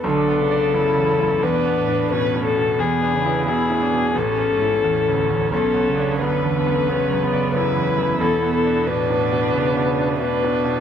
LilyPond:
<<
  \new Staff \with { instrumentName = "Violin" } { \time 4/4 \key b \dorian \tempo 4 = 88 a'2 b'4 b'8 a'8 | gis'4 gis'4 a'2 | a'4 b'2 b'4 | a'8 a'8 b'2 b'4 | }
  \new Staff \with { instrumentName = "Ambient pad" } { \time 4/4 \key b \dorian << { <b b'>1~ | <b b'>2 <cis' cis''>2 | <b b'>1~ | <b b'>1 | } \\ { a'1 | gis'2 a'2~ | a'1 | a1 | } >> }
  \new Staff \with { instrumentName = "Viola" } { \time 4/4 \key b \dorian d'4 e'4 d'4 cis'4 | b4 e'8 d'8 cis'4 cis'4~ | cis'4 b8 b8 cis'8 b8 e'4~ | e'4 d'2 d'4 | }
  \new Staff \with { instrumentName = "Cello" } { \clef bass \time 4/4 \key b \dorian d8 cis4. b,8 a,8 a,4 | b,8 cis8 b,4 a,8 gis,8 a,4 | b,8 cis8 d4 cis2 | b,4 a,4 cis4 b,4 | }
  \new Staff \with { instrumentName = "Grand piano" } { \clef bass \time 4/4 \key b \dorian \tuplet 3/2 { b,,8 b8 d''8 fis,8 e,8 fis,8 e,8 b8 d'8 b,8 a,8 b,8 } | \tuplet 3/2 { e,8 d'8 e'8 b,8 a,8 b,8 a,,8 cis'8 e'8 e,8 d,8 e,8 } | \tuplet 3/2 { b,,8 b8 d'8 fis,8 e,8 fis,8 b8 fis,8 d''8 fis,8 e,8 fis,8 } | \tuplet 3/2 { e,8 b8 d'8 b,8 a,8 b,8 b8 b,8 d'8 b,8 a,8 b,8 } | }
>>